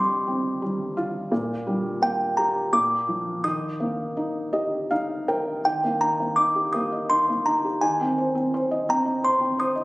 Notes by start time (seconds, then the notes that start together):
Already playing: F2 C3 G3 C6
0.27 C4
0.62 G3
0.97 F4
1.32 A#2
1.67 G3
2.02 A#3 G5
2.37 G4 A#5
2.73 A#2 D6
3.08 F3
3.44 D#3 D#6
3.80 A#3
4.17 D#4
4.53 G4 D#5
4.91 D#4 F5
5.28 A#4 G5
5.65 D#3 G5
5.84 A#3
6.01 D#4 A#5
6.20 A#3
6.36 D#4 D6
6.55 G4
6.73 A#3 D#6
6.92 D#5
7.10 D#4 C6
7.29 A#3
7.46 D#4 A#5
7.65 G4
7.81 D#3 G#5
8.01 C4
8.18 C5
8.35 C4
8.54 C5
8.71 D#5
8.89 C4 A#5
9.05 D#5
9.24 C5 C6
9.40 C4
9.59 C5 D#6
9.76 D#5